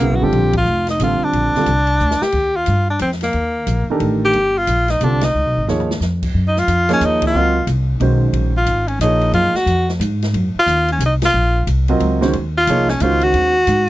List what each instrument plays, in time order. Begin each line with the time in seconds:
Already playing: tenor saxophone A#3
0.00 upright bass C2, grand piano C#3 F#3 B3 E4 G#4
0.11 upright bass A#1
0.15 tenor saxophone F#4
0.21 upright bass G1, grand piano D3 G3 C4 F4 A4, tenor saxophone G4
0.32 upright bass A#1, ride
0.53 kick, ride
0.58 tenor saxophone F4
0.65 upright bass F1, hi-hat pedal
0.87 tenor saxophone D#4, snare, ride
0.99 upright bass A1, grand piano D3 G3 C4 F4 A4, hi-hat pedal, ride
1.03 tenor saxophone F4
1.24 tenor saxophone D4
1.33 upright bass A#1, ride
1.54 grand piano D3 G3 C4 F4 A4, muted upright bass stroke, snare
1.66 upright bass C2, hi-hat pedal, ride
1.87 ride
1.99 upright bass D2, hi-hat pedal
2.11 snare
2.21 tenor saxophone G4, muted upright bass stroke, snare
2.32 upright bass D#2, kick, ride
2.56 tenor saxophone F4
2.66 upright bass G2, hi-hat pedal, ride
2.90 tenor saxophone D4
2.99 upright bass F2, tenor saxophone C4, hi-hat pedal, ride
3.12 snare
3.21 tenor saxophone A#3, snare, ride
3.33 upright bass D#2, ride
3.67 upright bass A#1, hi-hat pedal, ride
3.87 grand piano D#3 A4 A#4, muted upright bass stroke
3.91 grand piano D4 G4
4.00 upright bass A1, ride
4.25 tenor saxophone G4
4.33 upright bass G1, ride
4.58 tenor saxophone F4
4.67 upright bass A#1, hi-hat pedal, ride
4.88 tenor saxophone D#4, snare, ride
5.00 upright bass C2, grand piano D3 G3 C4 F4 A4, tenor saxophone D4, hi-hat pedal, ride
5.21 tenor saxophone D#4, snare, ride
5.34 upright bass C#2
5.45 upright bass B1
5.57 upright bass G#1
5.67 upright bass D#2, grand piano F3 A#3 D#4 G#4 C#5, snare
5.80 floor tom
5.91 snare
6.00 upright bass F2, snare, hi-hat pedal
6.22 kick, crash
6.34 upright bass F#2
6.48 tenor saxophone D#4
6.56 tenor saxophone F4, snare
6.67 upright bass F2, hi-hat pedal, ride
6.89 grand piano F3 A#3 D#4 G#4 C#5, snare, ride
6.93 tenor saxophone C#4
7.00 upright bass D#2, hi-hat pedal, ride
7.05 tenor saxophone D#4
7.22 kick, ride
7.27 tenor saxophone F4
7.34 upright bass C#2, grand piano F#3 C4 F4 A#4 D#5
7.67 upright bass C2, hi-hat pedal, ride
8.00 upright bass B1, grand piano D#3 G#3 C#4 F#4 C5, ride
8.33 upright bass A#1, ride
8.57 tenor saxophone F4
8.66 upright bass G#1, hi-hat pedal, ride
8.88 tenor saxophone C#4, ride
8.99 upright bass A#1, grand piano F3 A#3 D#4 C#5, tenor saxophone D#4, hi-hat pedal, ride
9.04 grand piano G#4
9.21 ride
9.32 upright bass F#2, tenor saxophone F4, ride
9.53 tenor saxophone F#4, muted upright bass stroke, snare
9.66 upright bass F2, hi-hat pedal, ride
9.89 snare
9.99 upright bass G#2, hi-hat pedal, ride
10.22 snare, ride
10.34 upright bass F#2, ride
10.55 muted upright bass stroke
10.59 tenor saxophone F4
10.66 upright bass D#2, hi-hat pedal, ride
10.88 tenor saxophone C#4, ride
10.99 upright bass C2, hi-hat pedal, ride
11.06 tenor saxophone D#4
11.22 tenor saxophone F4, snare, ride
11.34 upright bass A#1
11.67 upright bass C2, hi-hat pedal, ride
11.88 grand piano F#3 C4 F4 A#4 D#5, ride
12.00 upright bass C#2, ride
12.21 grand piano D#3 G#3 C#4 F#4 C5, snare
12.33 upright bass D#2, ride
12.58 tenor saxophone F4
12.67 upright bass C2, grand piano F3 A#3 D#4 G#4 C#5, hi-hat pedal, ride
12.89 tenor saxophone C#4, snare
13.00 upright bass C#2, grand piano D#3 G#3 C#4 F#4 C5, tenor saxophone F4, hi-hat pedal, ride
13.21 tenor saxophone F#4, ride
13.33 upright bass D#2, ride
13.67 upright bass G#2, hi-hat pedal, ride